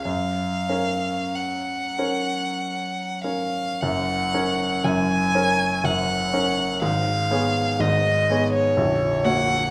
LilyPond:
<<
  \new Staff \with { instrumentName = "Violin" } { \time 3/4 \key fis \major \tempo 4 = 60 eis''4 fis''4. eis''8 | fis''4 gis''4 fis''4 | eis''4 dis''8. cis''8. fis''8 | }
  \new Staff \with { instrumentName = "Grand piano" } { \time 3/4 \key fis \major fis,8 <cis' ais' cis''>4 <cis' ais' cis''>4 <cis' ais' cis''>8 | <fis,, fis,>8 <cis' ais' cis''>8 <fis,, fis,>8 <cis' ais' cis''>8 <fis,, fis,>8 <cis' ais' cis''>8 | <gis,, gis,>8 <b gis' cis''>8 <gis,, gis,>8 <b gis' cis''>8 <ais,,, ais,,>8 <ais fis' cis''>8 | }
>>